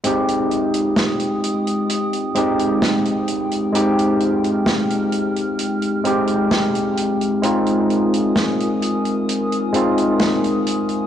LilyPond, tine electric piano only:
\new Staff \with { instrumentName = "Tine electric piano" } { \time 4/4 \key f \minor \tempo 4 = 65 <aes c' ees' g'>2~ <aes c' ees' g'>8 <aes c' ees' g'>4. | <aes c' ees' g'>2~ <aes c' ees' g'>8 <aes c' ees' g'>4. | <aes c' ees' f'>2~ <aes c' ees' f'>8 <aes c' ees' f'>4. | }